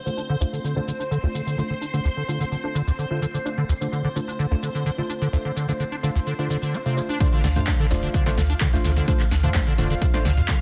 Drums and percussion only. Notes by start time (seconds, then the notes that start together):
0.07 shaker
0.18 shaker
0.41 shaker
0.54 shaker
0.65 shaker
0.88 shaker
1.00 shaker
1.12 shaker
1.35 shaker
1.47 shaker
1.59 shaker
1.82 shaker
1.94 shaker
2.06 shaker
2.29 shaker
2.41 shaker
2.52 shaker
2.76 shaker
2.88 shaker
2.99 shaker
3.23 shaker
3.35 shaker
3.46 shaker
3.70 shaker
3.82 shaker
3.93 shaker
4.17 shaker
4.29 shaker
4.40 shaker
4.63 shaker
4.75 shaker
4.87 shaker
5.10 shaker
5.22 shaker
5.34 shaker
5.57 shaker
5.69 shaker
5.81 shaker
6.04 shaker
6.16 shaker
6.27 shaker
6.51 shaker
6.63 shaker
6.74 shaker
6.98 shaker
7.10 shaker
7.20 kick, closed hi-hat, shaker
7.33 closed hi-hat
7.44 snare, open hi-hat, shaker
7.56 closed hi-hat, mid tom, shaker
7.67 kick, clap, closed hi-hat, shaker
7.79 closed hi-hat, shaker
7.91 snare, mid tom, open hi-hat, shaker
8.03 closed hi-hat, shaker
8.14 kick, closed hi-hat, shaker
8.26 snare, closed hi-hat, shaker
8.38 snare, open hi-hat, shaker
8.50 closed hi-hat, shaker
8.60 kick, clap, closed hi-hat, shaker
8.73 closed hi-hat, shaker
8.84 snare, open hi-hat, shaker
8.96 snare, closed hi-hat, shaker
9.08 kick, closed hi-hat, shaker
9.19 clap, closed hi-hat
9.31 snare, open hi-hat, shaker
9.43 closed hi-hat, mid tom, shaker
9.54 kick, clap, closed hi-hat, shaker
9.67 closed hi-hat, shaker
9.78 snare, mid tom, open hi-hat, shaker
9.90 closed hi-hat, shaker
10.02 kick, closed hi-hat, shaker
10.14 snare, closed hi-hat, shaker
10.25 snare, open hi-hat, shaker
10.37 closed hi-hat, mid tom, shaker
10.48 kick, clap, closed hi-hat, shaker